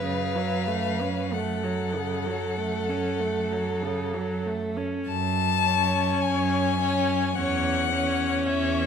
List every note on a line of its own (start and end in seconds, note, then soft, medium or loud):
0.00 0.37 C#3 soft
0.00 1.34 B4 soft
0.05 4.82 F#2 soft
0.05 1.35 F5 medium
0.36 0.69 F#3 soft
0.67 1.02 A3 soft
1.01 1.34 C#4 soft
1.33 1.65 A3 soft
1.33 4.86 A4 soft
1.33 4.47 F#5 soft
1.63 1.96 F#3 soft
1.95 2.27 C#3 soft
2.26 2.58 F#3 soft
2.59 2.90 A3 soft
2.89 3.21 C#4 soft
3.20 3.53 A3 soft
3.52 3.84 F#3 soft
3.83 4.15 C#3 soft
4.14 4.47 F#3 soft
4.46 4.78 A3 soft
4.76 5.07 C#4 soft
5.07 6.09 F#2 medium
5.07 6.23 A5 medium
5.65 6.77 C#4 soft
5.65 6.78 C#5 soft
6.22 7.23 F#2 medium
6.22 7.37 G#5 medium
6.80 7.35 C#4 medium
6.80 7.35 C#5 soft
7.35 8.35 E2 medium
7.35 7.91 C#4 soft
7.35 7.91 C#5 soft
7.35 8.48 F#5 medium
7.92 8.86 C#4 medium
7.92 8.86 C#5 soft
8.47 8.86 E2 medium
8.47 8.86 E5 medium